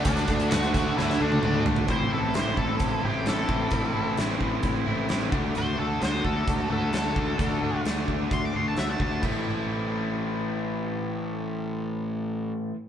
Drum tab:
CC |----------------|----------------|----------------|----------------|
HH |xxxxxxx---------|x---x---x---x---|x---x---x---x---|x---x---x---x---|
SD |-o--o---oo------|----o-------o---|----o-------o---|----o-------o---|
T1 |-----------o----|----------------|----------------|----------------|
T2 |------------o---|----------------|----------------|----------------|
FT |--------------oo|----------------|----------------|----------------|
BD |o-o---o---------|o-----o-o-----o-|o-----o-o-----o-|------o-o-----o-|

CC |----------------|x---------------|----------------|
HH |x---x---x---x---|----------------|----------------|
SD |----o-------o---|----------------|----------------|
T1 |----------------|----------------|----------------|
T2 |----------------|----------------|----------------|
FT |----------------|----------------|----------------|
BD |o-----o-o-----o-|o---------------|----------------|